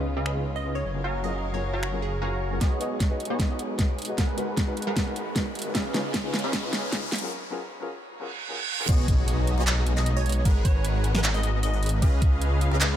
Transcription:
Already playing: C#2 C#3 B3 C#4 F4 G#4 B4 D#5 F5
0.17 C#4 G#4 B4 D#5 F5
0.26 finger snap
0.35 C#3 C#4 D#4 F4 B4
0.56 D#5
0.64 C#3 C#4 D#4 F4 B4
0.75 C#5
0.84 F#1 F#3 A#4 F5
0.94 F#3 C#4 F4 G#4 A#4
1.04 F#4 C#5 F5 G#5 A#5
1.23 F#3 C#4 F4 G#4 A#4 D#5
1.53 F#3 C#4 F4 G#4 A#4 C#5
1.73 F#4 C#5 F5 G#5 A#5
1.83 finger snap
1.92 F#3 C#4 F4 G#4 A#4
2.02 G#4
2.21 F#3 C#4 F4 F#4 G#4 A#4 C#5 F5 G#5 A#5
2.51 F#3 C#4 F4 G#4 A#4
2.61 B1 G#3 B3 D#4 F#4 G#4 C#5 D#5, kick, snare, closed hi-hat, riser
2.80 B3 F#4 G#4 C#5 D#5, closed hi-hat
3.00 kick, snare, closed hi-hat
3.09 B3 F#4 G#4 C#5 D#5
3.20 closed hi-hat
3.25 closed hi-hat
3.30 B1 B3 F#4 G#4 C#5 D#5
3.39 kick, snare, closed hi-hat
3.49 B3 F#4 G#4 C#5 D#5
3.59 closed hi-hat
3.78 B3 F#4 G#4 C#5 D#5, kick, snare, closed hi-hat
3.98 closed hi-hat
4.02 closed hi-hat
4.05 B3 F#4 G#4, closed hi-hat
4.09 C#5 D#5
4.18 G#1 G#3 B3 F#4 G#4 A#4 B4 F#5, kick, snare, closed hi-hat
4.37 G#3 D#4 F#4 A#4 B4, closed hi-hat
4.57 kick, snare, closed hi-hat
4.67 G#3 D#4 F#4 A#4 B4
4.77 closed hi-hat
4.82 closed hi-hat
4.87 G#1 G#3 G#4 A#4 B4 F#5
4.96 kick, snare, closed hi-hat
5.06 G#3 D#4 F#4 A#4 B4
5.16 closed hi-hat
5.35 G#3 D#4 F#4 A#4 B4, kick, snare, closed hi-hat
5.55 closed hi-hat
5.59 closed hi-hat
5.62 G#3 D#4 F#4, closed hi-hat
5.66 A#4 B4
5.75 C#2 C#3 B3 C#4 F4 G#4 B4 D#5 F5, kick, snare, closed hi-hat
5.93 C#3 C#4 D#4 F4 B4, snare, closed hi-hat
6.14 kick, snare, closed hi-hat
6.23 C#3 C#4 D#4 F4 B4
6.34 snare, closed hi-hat
6.39 closed hi-hat
6.44 C#2 C#4 G#4 B4 D#5 F5
6.53 kick, snare, closed hi-hat
6.63 C#3 C#4 D#4 F4 B4
6.73 snare, closed hi-hat
6.91 C#3 C#4 D#4 F4 B4, kick, snare, closed hi-hat
7.12 F#3 A#4, snare, closed hi-hat
7.16 closed hi-hat
7.18 F#3 C#4, closed hi-hat
7.22 F4 G#4 A#4
7.50 F#3 C#4 F4 G#4 A#4
7.80 F#3 C#4 F4 G#4 A#4
8.10 reverse cymbal
8.20 F#3 C#4 F4 G#4 A#4
8.48 F#3 C#4 F4 G#4 A#4
8.79 F#3 C#4 F4 G#4 A#4
8.88 B1 G#3 B3 D#4 F#4 G#4 C#5 D#5, kick, closed hi-hat, crash, impact
9.08 kick, closed hi-hat
9.28 closed hi-hat
9.47 closed hi-hat
9.58 B1 B3 F#4 G#4 C#5 D#5
9.67 clap, closed hi-hat
9.87 closed hi-hat
9.97 D#5, clap
10.06 closed hi-hat
10.17 C#5
10.26 closed hi-hat
10.29 closed hi-hat
10.32 closed hi-hat
10.45 G#1 G#3 B3 F#4 G#4 A#4 B4 F#5, kick, closed hi-hat
10.65 C#5, kick, closed hi-hat
10.85 closed hi-hat
11.04 closed hi-hat
11.15 G#1 G#3 G#4 A#4 B4 F#5, snare
11.24 clap, closed hi-hat
11.34 D#5
11.43 closed hi-hat
11.63 D#5, closed hi-hat
11.74 D#5
11.83 closed hi-hat
11.86 closed hi-hat
11.89 closed hi-hat
12.02 C#2 C#3 B3 C#4 G#4 B4 D#5 F5, kick, closed hi-hat
12.22 kick, closed hi-hat
12.42 closed hi-hat
12.61 closed hi-hat
12.71 C#2 C#4 G#4 B4 D#5 F5
12.81 clap, closed hi-hat

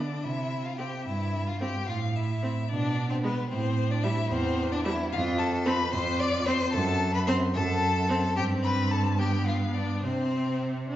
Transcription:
Already playing: D3 B3 D4 D5
0.23 C3 E4 E5
0.65 F4 F5
0.78 C4 G4 G5
1.05 G2 E4 E5
1.47 F4 F5
1.61 C4 G4 G5
1.87 A2 F4 F5
2.16 E4 E5
2.42 C4
2.69 B2 D4 D5
3.10 C4 C5
3.22 G#3 B3 B4
3.50 A2 C4 C5
3.91 D4 D5
4.03 G3 E4 E5
4.30 E2 C4 C5
4.72 D4 D5
4.85 G3 E4 E5
5.11 F2 F4 F5
5.38 A4 A5
5.66 C4 B4 B5
5.93 F2 C5 C6
6.19 D5 D6
6.46 C4 C5 C6
6.73 F#2 A4 A5
7.14 B4 B5
7.27 C4 C5 C6
7.54 F#2 A4 A5
8.09 C4
8.36 G2 C4 G4 G5
8.63 B4 B5
8.91 A4 A5
9.18 B3 G4 G5
9.46 F4 F5
9.74 D4 D5
10.03 C3 C4 C5
10.89 D4

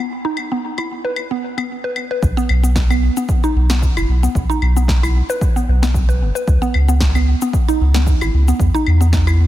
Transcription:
0.25 D#4
0.37 claves
0.52 B3
0.78 E4, claves
1.05 B4
1.16 claves
1.31 B3
1.58 B3, claves
1.84 B4
1.96 claves
2.11 B4
2.23 B1, kick, cabasa
2.37 B3, cabasa
2.49 B1, claves
2.63 B3, cabasa
2.76 kick, snare, cabasa
2.90 B3, cabasa, claves
3.17 B3, cabasa
3.29 kick, cabasa
3.44 D#4, cabasa
3.56 B1
3.70 B3, snare, cabasa
3.82 kick, cabasa
3.97 F#1 E4, cabasa, claves
4.09 B1
4.23 B3, cabasa
4.35 B1, kick, cabasa
4.50 D#4, cabasa
4.62 B1, claves
4.77 B3, cabasa
4.88 kick, snare, cabasa
5.03 E4, cabasa, claves
5.30 B4, cabasa
5.41 kick, cabasa
5.56 B3, cabasa
5.68 B1
5.83 B3, snare, cabasa
5.94 kick, cabasa
6.09 B4, cabasa
6.22 F#1
6.35 B4, cabasa
6.48 C#2, kick, cabasa
6.62 B3, cabasa
6.74 C#2, claves
6.88 B3, cabasa
7.01 kick, snare, cabasa
7.15 B3, cabasa, claves
7.42 B3, cabasa
7.53 kick, cabasa
7.68 D#4, cabasa
7.81 C#2
7.95 B3, snare, cabasa
8.07 kick, cabasa
8.21 G#1 E4, cabasa, claves
8.34 C#2
8.48 B3, cabasa
8.60 E2, kick, cabasa
8.74 D#4, cabasa
8.87 E2, claves
9.01 B3, cabasa
9.13 kick, snare, cabasa
9.27 E4, cabasa, claves

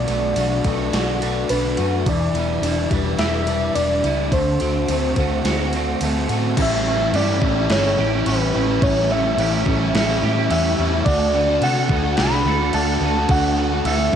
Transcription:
Already playing: B2 F#3 A3 D4 F#4 B4 D5
0.07 B1 A3 F#4, ride
0.36 B1 F#3 D4 F#4, ride
0.64 B1 A3 B4, kick, ride
0.93 B1 F#4, snare, ride
1.21 A3 D4 B4, ride
1.49 B1 F#3 D4 B4, ride
1.77 F#2 A3 F#4, ride
2.05 E1 E2 E3 D5, kick, ride
2.33 E1 G3 B3 E4, ride
2.62 E1 E3 D4 E4, ride
2.90 E1 G3 B3 B4, kick, ride
3.18 E1 E4 G4 E5, snare, ride
3.46 G3 D4 B4, ride
3.75 E1 E3 D4 D5, ride
4.04 C#2 B3 E4, ride
4.32 D2 D3 A3 C5, kick, ride
4.60 D2 D3 C4 F#4, ride
4.88 D2 A3 C4, ride
5.16 D2 A3 F#4, kick, ride
5.44 D2 C4 F#4, snare, ride
5.73 A3 C4 F#4, ride
6.01 D2 A3 C4, ride
6.29 A2 A3 C4 F#4, ride
6.57 A1 A2 E3 G3 C#4 E4, kick, crash
6.62 E5
6.88 E3 G3 A3 C#4 E4
7.01 G3 C#4 E4
7.13 G2 A2 E3 G3 G4 D5, crash
7.18 C#4 E4
7.26 G3 C#4 E4
7.42 A1 E3 G3 A3 C#4 E4, kick
7.57 G3 C#4 E4
7.69 G1 E3 G3 C#4 C#5, snare, crash
7.74 E4
7.84 G3 C#4 E4
7.97 A1 E3 G3 C#4 E4 G4, snare
8.12 G3 C#4 E4
8.25 A1 A2 E3 G3 C#4 E4 B4, crash
8.55 A1 E3 G3 A3 C#4 E4
8.69 G3 C#4 E4
8.82 A1 A2 E3 G3 C#4 E4 C#5, kick, crash
9.10 E3 G3 A3 C#4 E4 E5
9.24 G3 C#4 E4
9.37 A1 A2 E3 G3 C#4 E4 G4, crash
9.51 G3 C#4 E4
9.65 A1 E3 G3 A3 C#4 E4, kick
9.79 G3 C#4 E4
9.94 A1 E3 G3 C#4 E4, snare, crash
10.08 G3 C#4 E4
10.22 A2 E3 G3 C#4 E4 G4, snare
10.36 G3 C#4 E4
10.50 E2 A2 E3 G3 C#4 E4 E5, crash
10.78 E2 E3 G3 A3 C#4 E4
10.91 G3 C#4 E4
11.05 D2 D3 F#3 A3 D4 F#4 D5, kick, crash
11.33 D3 A3 B3 D4 F#4
11.48 A3 D4 F#4
11.61 C3 D3 A3 D4 F#4 A4 F#5, crash
11.76 A3 D4 F#4
11.89 D2 D3 A3 B3, kick
11.93 D4 F#4
12.04 A3 D4 F#4
12.17 C2 D3 A3 D4 B5, snare, crash
12.21 F#4
12.32 A3 D4 F#4
12.44 D2 D3 A3 D4 F#4 A4, snare
12.60 A3 D4 F#4
12.73 D2 D3 A3 D4 F#4 A5, crash
13.00 D2 D3 A3 B3
13.05 D4 F#4
13.17 A3 D4 F#4
13.29 D2 D3 F#3 A3 D4 F#4 F#5, kick, crash
13.58 D3 A3 B3 D4 F#4
13.73 A3 D4 F#4
13.85 D2 D3 A3 D4 F#4 A4 E5, crash
13.98 A3 D4 F#4
14.12 D3

